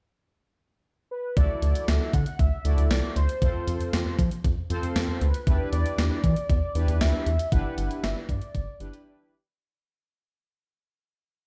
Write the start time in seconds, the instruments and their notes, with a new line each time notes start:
1.11 soft synth lead B4
1.37 analog synth bass D2, analog polysynth E4 F#4 A4 D5, soft synth lead D5, kick, closed hi-hat
1.62 analog synth bass D2, soft synth lead D5, closed hi-hat
1.75 closed hi-hat
1.88 analog synth bass D2, soft synth lead E5, snare, closed hi-hat
2.13 analog synth bass D3, soft synth lead F#5, kick, closed hi-hat
2.26 closed hi-hat
2.39 analog synth bass D2, soft synth lead E5, kick, closed hi-hat
2.65 analog synth bass D2, analog polysynth E4 F#4 A4 D5, closed hi-hat
2.78 analog synth bass D2, closed hi-hat
2.90 analog synth bass C2, soft synth lead D5, snare, closed hi-hat
3.16 analog synth bass D2, soft synth lead C5, closed hi-hat
3.29 closed hi-hat
3.42 analog synth bass F2, analog polysynth C4 F4 A4 C5, kick, closed hi-hat
3.67 analog synth bass F2, closed hi-hat
3.80 closed hi-hat
3.93 analog synth bass F2, snare, closed hi-hat
4.19 analog synth bass F3, kick, closed hi-hat
4.31 closed hi-hat
4.44 analog synth bass F2, kick, closed hi-hat
4.70 analog synth bass F2, analog polysynth C4 F4 A4 C5, closed hi-hat
4.83 closed hi-hat
4.96 analog synth bass F2, snare, closed hi-hat
5.21 analog synth bass D2, soft synth lead B4, closed hi-hat
5.34 closed hi-hat
5.47 analog synth bass E2, analog polysynth D4 E4 G4 B4, kick, closed hi-hat
5.73 analog synth bass E2, soft synth lead D5, closed hi-hat
5.86 closed hi-hat
5.98 analog synth bass E2, snare, closed hi-hat
6.24 analog synth bass E3, kick, closed hi-hat
6.36 closed hi-hat
6.49 analog synth bass E2, soft synth lead D5, kick, closed hi-hat
6.75 analog synth bass E2, analog polysynth D4 E4 G4 B4, closed hi-hat
6.88 analog synth bass E2, closed hi-hat
7.01 analog synth bass D2, soft synth lead E5, snare, closed hi-hat
7.26 analog synth bass E2, closed hi-hat
7.39 closed hi-hat
7.52 analog synth bass G1, analog polysynth D4 E4 G4 B4, soft synth lead F#5, kick, closed hi-hat
7.78 analog synth bass G1, closed hi-hat
7.91 closed hi-hat
8.03 analog synth bass G1, soft synth lead E5, snare, closed hi-hat
8.29 analog synth bass G2, soft synth lead D5, kick, closed hi-hat
8.41 closed hi-hat
8.55 analog synth bass G1, kick, closed hi-hat
8.80 analog synth bass G1, analog polysynth D4 E4 G4 B4, closed hi-hat
8.93 closed hi-hat